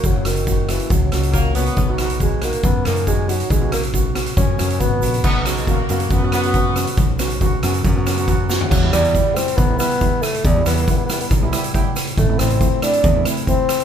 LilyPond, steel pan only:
\new Staff \with { instrumentName = "Steel pan" } { \time 4/4 \key b \lydian \tempo 4 = 138 << { r1 | r1 | r1 | r1 |
r1 | \key e \minor r1 | r2. g''4 | r1 | } \\ { r16 <ais cis' fis'>16 <ais cis' fis'>16 r16 <ais cis' fis'>16 r16 <ais cis' fis'>8 r8 <ais cis' fis'>16 r16 <ais cis' fis'>16 r16 <ais cis' fis'>8 | r16 <b dis' fis'>16 <b dis' fis'>16 r16 <b dis' fis'>16 r16 <b dis' fis'>8 r8 <b dis' fis'>16 r16 <b dis' fis'>16 r16 <b dis' fis'>8 | r16 <b cis' fis'>16 <b cis' fis'>16 r16 <b cis' fis'>16 r16 <b cis' fis'>8 r8 <b cis' fis'>16 r16 <b cis' fis'>16 r16 <b cis' fis'>8 | r8 <b cis' fis'>16 r16 <b cis' fis'>16 r16 <b cis' fis'>8 r16 <b cis' fis'>16 <b cis' fis'>16 <b cis' fis'>16 <b cis' fis'>16 r16 <b cis' fis'>8 |
r8 <b cis' fis'>16 r16 <b cis' fis'>16 r16 <b cis' fis'>8 r16 <b cis' fis'>16 <b cis' fis'>16 <b cis' fis'>16 <b cis' fis'>16 r16 <b cis' fis'>8 | r16 <g b e'>16 <g b e'>16 r16 <g b e'>16 r16 <g b e'>8 r16 <g b e'>16 <g b e'>16 r16 <g b e'>8. r16 | r16 <g b e'>16 <g b e'>16 r16 <g b e'>16 r16 <g b e'>8 r16 <g b e'>16 <g b e'>16 r16 <g b e'>8. r16 | r16 <a c' e'>16 <a c' e'>16 r16 <a c' e'>16 r16 <a c' e'>8 r16 <a c' e'>16 <a c' e'>16 r16 <a c' e'>8. r16 | } >> }